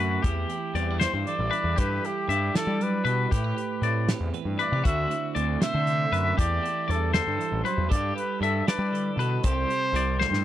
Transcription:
Already playing: picked electric bass F#2, clean electric guitar A2 D3 A3 C4 B4, trumpet F#4
0.00 clean electric guitar E4
0.22 picked electric bass E2, clean electric guitar E3 E4 G4, trumpet G4, kick, closed hi-hat
0.49 clean electric guitar E4, closed hi-hat
0.75 picked electric bass E2, clean electric guitar G3 C4 D5, closed hi-hat
0.91 clean electric guitar D4
1.00 clean electric guitar E4 C5, trumpet C5, snare, closed hi-hat
1.14 picked electric bass G2
1.26 clean electric guitar E3 A4, trumpet D5, closed hi-hat
1.39 picked electric bass A1
1.51 clean electric guitar E4 B4, closed hi-hat
1.64 picked electric bass E2
1.76 picked electric bass G2, clean electric guitar G3 G4 A4, trumpet B4, kick, closed hi-hat
2.04 clean electric guitar E4, trumpet G4, closed hi-hat
2.28 picked electric bass G2, clean electric guitar D4 E4 E5, closed hi-hat
2.54 clean electric guitar E3 D5, trumpet A4, snare, closed hi-hat
2.67 picked electric bass G3
2.81 clean electric guitar F#3, trumpet B4, closed hi-hat
3.05 picked electric bass B2, clean electric guitar G3 B4, closed hi-hat
3.31 picked electric bass A2, clean electric guitar A2 E4 G4, trumpet B4, kick, closed hi-hat
3.44 clean electric guitar G4
3.57 clean electric guitar G4, closed hi-hat
3.82 picked electric bass A2, clean electric guitar A3 C4 D5, closed hi-hat
4.09 clean electric guitar G4, snare, closed hi-hat
4.20 picked electric bass E2
4.34 clean electric guitar E3 B4, closed hi-hat
4.45 picked electric bass G2
4.59 clean electric guitar E4 B4, trumpet D5, closed hi-hat
4.72 picked electric bass C3, clean electric guitar G4
4.84 picked electric bass D2, clean electric guitar D3 F#4 C5, trumpet E5, kick, closed hi-hat
5.11 clean electric guitar E4, closed hi-hat
5.35 picked electric bass D2, clean electric guitar A3 C4 D5, closed hi-hat
5.60 clean electric guitar B2 C5, trumpet E5, snare, closed hi-hat
5.74 picked electric bass D3
5.86 clean electric guitar C3, closed hi-hat
6.11 picked electric bass F#2, clean electric guitar D3 B4, closed hi-hat
6.37 picked electric bass E2, clean electric guitar E3 G4 A4, trumpet D5, kick, closed hi-hat
6.63 clean electric guitar E4, closed hi-hat
6.88 picked electric bass E2, clean electric guitar G3 D4 D5, trumpet A4, closed hi-hat
7.13 clean electric guitar D3 C5, trumpet A4, snare, closed hi-hat
7.27 picked electric bass G2
7.38 clean electric guitar E3, closed hi-hat
7.52 picked electric bass A1
7.64 clean electric guitar F#3 B4, trumpet C5, closed hi-hat
7.78 picked electric bass E2
7.89 picked electric bass G2, clean electric guitar G3 G4 A4, trumpet D5, kick, closed hi-hat
8.16 clean electric guitar A4, trumpet B4, closed hi-hat
8.41 picked electric bass G2, clean electric guitar D4 E4 E5, trumpet A4, closed hi-hat
8.67 clean electric guitar A4 D5, trumpet B4, snare, closed hi-hat
8.79 picked electric bass G3
8.92 clean electric guitar D3 A4, closed hi-hat
9.17 picked electric bass B2, clean electric guitar A4 B4, closed hi-hat
9.43 picked electric bass C2, clean electric guitar C3 G4 A4, trumpet C5, kick, closed hi-hat
9.70 clean electric guitar G4, closed hi-hat
9.93 picked electric bass C2, clean electric guitar G3 E4 D5, closed hi-hat
10.19 clean electric guitar A2 C5, snare
10.31 picked electric bass G2, snare

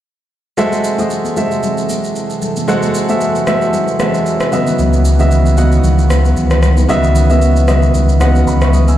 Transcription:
0.57 analog synth pad C3 E3 F#3 A4, grand piano G#3 F#4 A4 C5 E5, low conga, shaker
0.72 high conga, shaker
0.84 shaker
0.98 grand piano G#3 F#4 A4 C5 D#5, high conga, shaker
1.10 shaker
1.24 high conga, shaker
1.36 grand piano G#3 F#4 A4 C5 E5, high conga, low conga, shaker
1.51 shaker
1.63 low conga, shaker
1.78 shaker
1.89 high conga, shaker
2.04 shaker
2.16 shaker
2.30 shaker
2.42 low conga, shaker
2.56 high conga, shaker
2.68 grand piano G#3 F#4 A4 C5 F#5, low conga, shaker
2.82 high conga, shaker
2.95 shaker
3.08 grand piano G#3 F#4 A4 C5 E5, high conga, shaker
3.21 shaker
3.35 high conga, shaker
3.46 grand piano G#3 F#4 A4 C5 E5, cross-stick, high conga, low conga, shaker
3.62 shaker
3.73 low conga, shaker
3.88 shaker
3.99 grand piano G#3 F#4 A4 C5 E5, cross-stick, high conga, shaker
4.14 shaker
4.26 shaker
4.40 cross-stick, shaker
4.52 grand piano C#3 B3 F#4 D#5 E5, analog synth pad D#3 B3, low conga, shaker
4.67 high conga, shaker
4.79 sub bass C#2, low conga, shaker
4.93 high conga, shaker
5.05 shaker
5.19 grand piano C#3 B3 F#4 D#5 E5, high conga, shaker
5.31 shaker
5.45 high conga, shaker
5.57 grand piano C#3 B3 F#4 D#5 F#5, high conga, low conga, shaker
5.72 shaker
5.83 sub bass C#2, low conga, shaker
5.98 shaker
6.10 cross-stick, high conga, shaker
6.25 shaker
6.36 sub bass C#2, shaker
6.51 cross-stick, shaker
6.63 cross-stick, low conga, shaker
6.77 high conga, shaker
6.88 sub bass C#2, grand piano C#3 B3 F#4 D#5 E5, low conga, shaker
7.04 high conga, shaker
7.15 shaker
7.29 grand piano C#3 B3 F#4 D#5 E5, high conga, shaker
7.42 shaker
7.55 high conga, shaker
7.67 grand piano C#3 B3 F#4 D#5 E5, cross-stick, high conga, low conga, shaker
7.82 shaker
7.94 sub bass C#2, low conga, shaker
8.08 high conga, shaker
8.20 grand piano C#3 B3 F#4 D#5 F#5, cross-stick, high conga, shaker
8.35 shaker
8.47 sub bass C#2, grand piano D#5 B5, shaker
8.61 grand piano E5 C#6, cross-stick, shaker
8.73 grand piano F#5 D#6, low conga, shaker
8.88 grand piano G#5 E6, high conga, shaker

